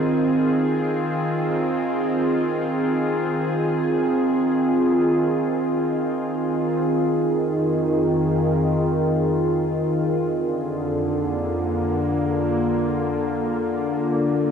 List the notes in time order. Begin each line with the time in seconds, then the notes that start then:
Already playing: D#3 C4 F4 G#4
6.90 F2 D#3
10.28 F2 D3
10.97 A#3
13.66 F2
14.48 G#3